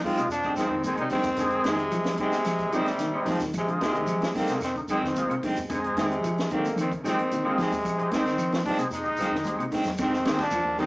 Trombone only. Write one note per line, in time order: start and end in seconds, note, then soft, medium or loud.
0.04 0.29 F4 loud
0.31 0.56 D4 loud
0.57 0.82 C4 medium
0.85 0.98 C4 loud
0.99 1.11 D#4 medium
1.13 1.62 C4 loud
1.67 2.16 G#3 loud
2.20 2.77 G#3 loud
2.75 3.28 G3 loud
3.31 3.42 F3 medium
3.58 3.69 G#3 medium
3.83 4.32 G#3 loud
4.38 4.62 A#3 medium
4.64 4.76 C4 medium
4.92 5.41 C4 medium
6.01 6.49 G#3 medium
6.53 6.77 A#3 medium
6.81 6.92 C4 loud
7.08 7.56 C4 loud
7.61 8.09 G#3 loud
8.13 8.63 C4 loud
8.65 8.77 D4 loud
8.92 9.69 D#4 loud
10.01 10.38 C4 loud
10.42 10.78 D4 loud
10.80 10.86 D#4 loud